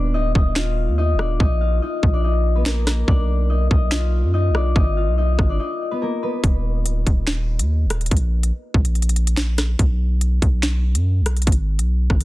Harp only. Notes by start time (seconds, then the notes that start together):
Already playing: B3 D4 F4 B4 D5
0.14 D#4 D#5
0.35 D#4 D#5
0.56 F4 F5
0.98 D#4 D#5
1.19 D4 D5
1.40 D#4 D#5
1.61 F4 F5
1.82 D#4 D#5
2.13 D4 D5
2.24 D#4 D#5
2.55 B3 B4
2.66 A#3 A#4
2.87 A#3 A#4
3.08 D4 D5
3.50 D#4 D#5
3.71 D#4 D#5
3.93 F4
4.34 D#4 D#5
4.55 D4 D5
4.76 D#4 D#5
4.97 F4 F5
5.18 D#4 D#5
5.49 D4 D5
5.60 D#4 D#5
5.91 B3 B4
6.02 A#3 A#4
6.23 B3 B4